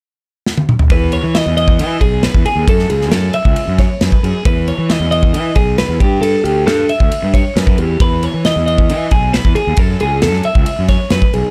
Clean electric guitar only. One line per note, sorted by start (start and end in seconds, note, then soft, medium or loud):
0.92 1.13 B4 medium
1.13 1.35 C#5 medium
1.35 1.56 D#5 medium
1.57 2.01 D#5 medium
2.01 2.23 G#4 medium
2.23 2.45 B4 medium
2.46 2.68 G#4 medium
2.69 2.90 A4 medium
2.90 3.12 G#4 medium
3.12 3.34 A4 medium
3.34 3.79 E5 medium
3.80 4.01 C#5 medium
4.01 4.23 B4 medium
4.23 4.45 G#4 medium
4.46 4.68 B4 medium
4.68 4.89 C#5 medium
4.89 5.10 D#5 medium
5.11 5.56 D#5 medium
5.56 5.78 G#4 medium
5.78 6.00 B4 medium
6.00 6.21 G4 medium
6.22 6.44 A4 medium
6.44 6.66 G4 medium
6.66 6.89 A4 medium
6.90 7.34 E5 medium
7.34 7.57 C#5 medium
7.57 7.79 B4 medium
7.79 8.01 G4 medium
8.01 8.24 B4 medium
8.24 8.45 C#5 medium
8.45 8.65 D#5 medium
8.66 9.11 D#5 medium
9.12 9.33 G#4 medium
9.33 9.55 B4 medium
9.55 9.79 G#4 medium
9.79 10.00 A4 medium
10.01 10.22 G#4 medium
10.23 10.45 A4 medium
10.45 10.89 E5 medium
10.89 11.11 C#5 medium
11.12 11.34 B4 medium
11.34 11.51 G#4 medium